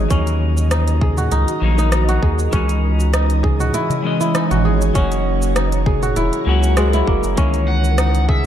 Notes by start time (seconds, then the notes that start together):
Already playing: D#4 F#4 G#4
0.09 D#2 D#3 F#3 A#3 C#4 F#4 A#4 D#5 A#5, kick, closed hi-hat, shaker
0.13 D#4
0.27 closed hi-hat, darbuka ka, shaker
0.57 shaker
0.71 D#4, cross-stick, closed hi-hat, shaker
0.88 closed hi-hat, shaker
1.01 G#4, kick, darbuka tek, darbuka dum
1.18 F#4, mid tom, shaker
1.32 C#2 D#4, closed hi-hat, shaker
1.48 closed hi-hat, shaker
1.60 A#1 D#3 F#3 A#3 D#4
1.78 D#4, darbuka ka, shaker
1.92 D#4, cross-stick, closed hi-hat, shaker
2.09 F#4, closed hi-hat, darbuka tek, shaker
2.22 D#2 G#4, kick, darbuka ka
2.38 darbuka ka, shaker
2.51 C#2 E3 G#3 C#4 D#4 C#5 D#5 G#5, kick, closed hi-hat, shaker
2.69 closed hi-hat, darbuka ka, shaker
3.00 shaker
3.13 D#4, cross-stick, closed hi-hat, shaker
3.30 closed hi-hat, shaker
3.43 G#4, kick, darbuka tek, darbuka dum
3.60 F#4, mid tom, shaker
3.74 E4, closed hi-hat, shaker
3.90 closed hi-hat, darbuka dum, shaker
4.02 E3 G#3 C#4
4.07 D#5
4.21 E4, shaker
4.35 D#4, cross-stick, closed hi-hat, shaker
4.51 G#1 F#4, closed hi-hat, mid tom, shaker
4.65 G#4
4.81 darbuka tek, shaker
4.93 F#1 F#3 A#3 C#4 F#4 A#4 A#5, kick, closed hi-hat, shaker
5.11 closed hi-hat, darbuka ka, shaker
5.42 shaker
5.56 D#4, cross-stick, closed hi-hat, shaker
5.72 closed hi-hat, shaker
5.86 G#4, kick, darbuka tek, darbuka dum
6.03 F#4, closed hi-hat, mid tom, shaker
6.16 E1 E4, closed hi-hat, shaker
6.33 closed hi-hat, shaker
6.45 C#2 F#3 A#3 C#4 F#4
6.63 darbuka ka, shaker
6.77 C#2 G#3, cross-stick, closed hi-hat, shaker
6.93 E4, closed hi-hat, darbuka tek, shaker
7.07 F#1 A#3, kick, darbuka ka
7.24 F#1, darbuka ka, shaker
7.35 C#2 C#3 E3 G#3 C#4 G#5, kick, closed hi-hat, shaker
7.40 D#3
7.54 closed hi-hat, darbuka ka, shaker
7.68 F#5
7.84 shaker
7.98 D#4, cross-stick, closed hi-hat, shaker
8.15 closed hi-hat, shaker
8.29 G#4 E5, kick, darbuka tek, darbuka dum